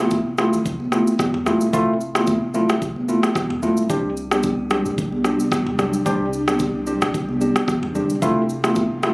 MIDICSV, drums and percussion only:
0, 0, Header, 1, 2, 480
1, 0, Start_track
1, 0, Key_signature, 0, "major"
1, 0, Tempo, 540541
1, 1541, Time_signature, 4, 2, 24, 8
1, 8114, End_track
2, 0, Start_track
2, 0, Title_t, "Drums"
2, 0, Note_on_c, 9, 63, 78
2, 86, Note_off_c, 9, 63, 0
2, 93, Note_on_c, 9, 82, 74
2, 100, Note_on_c, 9, 36, 94
2, 182, Note_off_c, 9, 82, 0
2, 189, Note_off_c, 9, 36, 0
2, 337, Note_on_c, 9, 82, 51
2, 342, Note_on_c, 9, 37, 103
2, 343, Note_on_c, 9, 64, 77
2, 426, Note_off_c, 9, 82, 0
2, 430, Note_off_c, 9, 37, 0
2, 431, Note_off_c, 9, 64, 0
2, 471, Note_on_c, 9, 82, 65
2, 560, Note_off_c, 9, 82, 0
2, 583, Note_on_c, 9, 36, 111
2, 584, Note_on_c, 9, 82, 60
2, 672, Note_off_c, 9, 36, 0
2, 672, Note_off_c, 9, 82, 0
2, 709, Note_on_c, 9, 63, 75
2, 798, Note_off_c, 9, 63, 0
2, 817, Note_on_c, 9, 37, 87
2, 820, Note_on_c, 9, 82, 61
2, 826, Note_on_c, 9, 63, 80
2, 906, Note_off_c, 9, 37, 0
2, 909, Note_off_c, 9, 82, 0
2, 915, Note_off_c, 9, 63, 0
2, 952, Note_on_c, 9, 82, 66
2, 1040, Note_off_c, 9, 82, 0
2, 1054, Note_on_c, 9, 63, 69
2, 1054, Note_on_c, 9, 64, 71
2, 1058, Note_on_c, 9, 36, 95
2, 1061, Note_on_c, 9, 37, 96
2, 1065, Note_on_c, 9, 82, 68
2, 1142, Note_off_c, 9, 63, 0
2, 1142, Note_off_c, 9, 64, 0
2, 1147, Note_off_c, 9, 36, 0
2, 1150, Note_off_c, 9, 37, 0
2, 1154, Note_off_c, 9, 82, 0
2, 1191, Note_on_c, 9, 45, 103
2, 1279, Note_off_c, 9, 45, 0
2, 1300, Note_on_c, 9, 37, 91
2, 1300, Note_on_c, 9, 82, 54
2, 1302, Note_on_c, 9, 64, 94
2, 1388, Note_off_c, 9, 82, 0
2, 1389, Note_off_c, 9, 37, 0
2, 1391, Note_off_c, 9, 64, 0
2, 1428, Note_on_c, 9, 82, 69
2, 1517, Note_off_c, 9, 82, 0
2, 1540, Note_on_c, 9, 36, 112
2, 1540, Note_on_c, 9, 82, 85
2, 1629, Note_off_c, 9, 36, 0
2, 1629, Note_off_c, 9, 82, 0
2, 1782, Note_on_c, 9, 82, 51
2, 1871, Note_off_c, 9, 82, 0
2, 1911, Note_on_c, 9, 37, 96
2, 1914, Note_on_c, 9, 82, 74
2, 1916, Note_on_c, 9, 63, 75
2, 2000, Note_off_c, 9, 37, 0
2, 2003, Note_off_c, 9, 82, 0
2, 2005, Note_off_c, 9, 63, 0
2, 2013, Note_on_c, 9, 82, 70
2, 2020, Note_on_c, 9, 36, 93
2, 2102, Note_off_c, 9, 82, 0
2, 2109, Note_off_c, 9, 36, 0
2, 2256, Note_on_c, 9, 82, 50
2, 2262, Note_on_c, 9, 64, 77
2, 2345, Note_off_c, 9, 82, 0
2, 2351, Note_off_c, 9, 64, 0
2, 2391, Note_on_c, 9, 82, 66
2, 2394, Note_on_c, 9, 37, 105
2, 2480, Note_off_c, 9, 82, 0
2, 2483, Note_off_c, 9, 37, 0
2, 2503, Note_on_c, 9, 36, 107
2, 2504, Note_on_c, 9, 82, 60
2, 2592, Note_off_c, 9, 36, 0
2, 2592, Note_off_c, 9, 82, 0
2, 2631, Note_on_c, 9, 63, 71
2, 2719, Note_off_c, 9, 63, 0
2, 2740, Note_on_c, 9, 82, 58
2, 2747, Note_on_c, 9, 63, 78
2, 2829, Note_off_c, 9, 82, 0
2, 2835, Note_off_c, 9, 63, 0
2, 2871, Note_on_c, 9, 37, 99
2, 2872, Note_on_c, 9, 82, 67
2, 2959, Note_off_c, 9, 37, 0
2, 2961, Note_off_c, 9, 82, 0
2, 2974, Note_on_c, 9, 63, 72
2, 2974, Note_on_c, 9, 64, 71
2, 2979, Note_on_c, 9, 36, 95
2, 2981, Note_on_c, 9, 37, 98
2, 2985, Note_on_c, 9, 82, 68
2, 3063, Note_off_c, 9, 63, 0
2, 3063, Note_off_c, 9, 64, 0
2, 3067, Note_off_c, 9, 36, 0
2, 3070, Note_off_c, 9, 37, 0
2, 3074, Note_off_c, 9, 82, 0
2, 3111, Note_on_c, 9, 45, 102
2, 3200, Note_off_c, 9, 45, 0
2, 3220, Note_on_c, 9, 82, 52
2, 3223, Note_on_c, 9, 64, 95
2, 3309, Note_off_c, 9, 82, 0
2, 3312, Note_off_c, 9, 64, 0
2, 3348, Note_on_c, 9, 82, 69
2, 3437, Note_off_c, 9, 82, 0
2, 3460, Note_on_c, 9, 36, 120
2, 3461, Note_on_c, 9, 82, 84
2, 3549, Note_off_c, 9, 36, 0
2, 3549, Note_off_c, 9, 82, 0
2, 3702, Note_on_c, 9, 82, 53
2, 3790, Note_off_c, 9, 82, 0
2, 3831, Note_on_c, 9, 37, 101
2, 3834, Note_on_c, 9, 82, 74
2, 3837, Note_on_c, 9, 63, 74
2, 3920, Note_off_c, 9, 37, 0
2, 3923, Note_off_c, 9, 82, 0
2, 3925, Note_off_c, 9, 63, 0
2, 3933, Note_on_c, 9, 82, 72
2, 3940, Note_on_c, 9, 36, 93
2, 4022, Note_off_c, 9, 82, 0
2, 4029, Note_off_c, 9, 36, 0
2, 4176, Note_on_c, 9, 82, 50
2, 4181, Note_on_c, 9, 37, 100
2, 4183, Note_on_c, 9, 64, 75
2, 4265, Note_off_c, 9, 82, 0
2, 4270, Note_off_c, 9, 37, 0
2, 4272, Note_off_c, 9, 64, 0
2, 4311, Note_on_c, 9, 82, 63
2, 4400, Note_off_c, 9, 82, 0
2, 4423, Note_on_c, 9, 36, 113
2, 4423, Note_on_c, 9, 82, 60
2, 4511, Note_off_c, 9, 36, 0
2, 4512, Note_off_c, 9, 82, 0
2, 4550, Note_on_c, 9, 63, 72
2, 4639, Note_off_c, 9, 63, 0
2, 4657, Note_on_c, 9, 37, 86
2, 4660, Note_on_c, 9, 82, 58
2, 4667, Note_on_c, 9, 63, 83
2, 4746, Note_off_c, 9, 37, 0
2, 4749, Note_off_c, 9, 82, 0
2, 4755, Note_off_c, 9, 63, 0
2, 4792, Note_on_c, 9, 82, 69
2, 4881, Note_off_c, 9, 82, 0
2, 4894, Note_on_c, 9, 63, 73
2, 4894, Note_on_c, 9, 64, 71
2, 4899, Note_on_c, 9, 36, 97
2, 4901, Note_on_c, 9, 37, 95
2, 4906, Note_on_c, 9, 82, 67
2, 4982, Note_off_c, 9, 63, 0
2, 4982, Note_off_c, 9, 64, 0
2, 4987, Note_off_c, 9, 36, 0
2, 4990, Note_off_c, 9, 37, 0
2, 4995, Note_off_c, 9, 82, 0
2, 5031, Note_on_c, 9, 45, 105
2, 5120, Note_off_c, 9, 45, 0
2, 5140, Note_on_c, 9, 82, 52
2, 5141, Note_on_c, 9, 37, 89
2, 5143, Note_on_c, 9, 64, 93
2, 5229, Note_off_c, 9, 82, 0
2, 5230, Note_off_c, 9, 37, 0
2, 5232, Note_off_c, 9, 64, 0
2, 5269, Note_on_c, 9, 82, 69
2, 5358, Note_off_c, 9, 82, 0
2, 5380, Note_on_c, 9, 36, 123
2, 5381, Note_on_c, 9, 82, 85
2, 5469, Note_off_c, 9, 36, 0
2, 5470, Note_off_c, 9, 82, 0
2, 5622, Note_on_c, 9, 82, 51
2, 5711, Note_off_c, 9, 82, 0
2, 5752, Note_on_c, 9, 37, 100
2, 5755, Note_on_c, 9, 82, 75
2, 5758, Note_on_c, 9, 63, 78
2, 5841, Note_off_c, 9, 37, 0
2, 5844, Note_off_c, 9, 82, 0
2, 5846, Note_off_c, 9, 63, 0
2, 5854, Note_on_c, 9, 82, 74
2, 5860, Note_on_c, 9, 36, 98
2, 5943, Note_off_c, 9, 82, 0
2, 5949, Note_off_c, 9, 36, 0
2, 6097, Note_on_c, 9, 82, 49
2, 6103, Note_on_c, 9, 64, 75
2, 6186, Note_off_c, 9, 82, 0
2, 6192, Note_off_c, 9, 64, 0
2, 6232, Note_on_c, 9, 82, 65
2, 6234, Note_on_c, 9, 37, 107
2, 6320, Note_off_c, 9, 82, 0
2, 6323, Note_off_c, 9, 37, 0
2, 6343, Note_on_c, 9, 36, 105
2, 6344, Note_on_c, 9, 82, 62
2, 6432, Note_off_c, 9, 36, 0
2, 6433, Note_off_c, 9, 82, 0
2, 6471, Note_on_c, 9, 63, 74
2, 6559, Note_off_c, 9, 63, 0
2, 6581, Note_on_c, 9, 82, 57
2, 6587, Note_on_c, 9, 63, 79
2, 6670, Note_off_c, 9, 82, 0
2, 6676, Note_off_c, 9, 63, 0
2, 6711, Note_on_c, 9, 37, 97
2, 6713, Note_on_c, 9, 82, 69
2, 6800, Note_off_c, 9, 37, 0
2, 6802, Note_off_c, 9, 82, 0
2, 6814, Note_on_c, 9, 63, 72
2, 6814, Note_on_c, 9, 64, 74
2, 6819, Note_on_c, 9, 36, 100
2, 6821, Note_on_c, 9, 37, 94
2, 6826, Note_on_c, 9, 82, 68
2, 6903, Note_off_c, 9, 63, 0
2, 6903, Note_off_c, 9, 64, 0
2, 6908, Note_off_c, 9, 36, 0
2, 6910, Note_off_c, 9, 37, 0
2, 6915, Note_off_c, 9, 82, 0
2, 6951, Note_on_c, 9, 45, 104
2, 7040, Note_off_c, 9, 45, 0
2, 7061, Note_on_c, 9, 82, 53
2, 7063, Note_on_c, 9, 64, 95
2, 7149, Note_off_c, 9, 82, 0
2, 7152, Note_off_c, 9, 64, 0
2, 7189, Note_on_c, 9, 82, 68
2, 7278, Note_off_c, 9, 82, 0
2, 7301, Note_on_c, 9, 36, 119
2, 7301, Note_on_c, 9, 82, 87
2, 7389, Note_off_c, 9, 36, 0
2, 7390, Note_off_c, 9, 82, 0
2, 7542, Note_on_c, 9, 82, 52
2, 7631, Note_off_c, 9, 82, 0
2, 7672, Note_on_c, 9, 37, 104
2, 7675, Note_on_c, 9, 82, 76
2, 7677, Note_on_c, 9, 63, 77
2, 7760, Note_off_c, 9, 37, 0
2, 7764, Note_off_c, 9, 82, 0
2, 7765, Note_off_c, 9, 63, 0
2, 7774, Note_on_c, 9, 82, 73
2, 7780, Note_on_c, 9, 36, 95
2, 7862, Note_off_c, 9, 82, 0
2, 7869, Note_off_c, 9, 36, 0
2, 8017, Note_on_c, 9, 82, 50
2, 8022, Note_on_c, 9, 37, 99
2, 8023, Note_on_c, 9, 64, 75
2, 8106, Note_off_c, 9, 82, 0
2, 8110, Note_off_c, 9, 37, 0
2, 8112, Note_off_c, 9, 64, 0
2, 8114, End_track
0, 0, End_of_file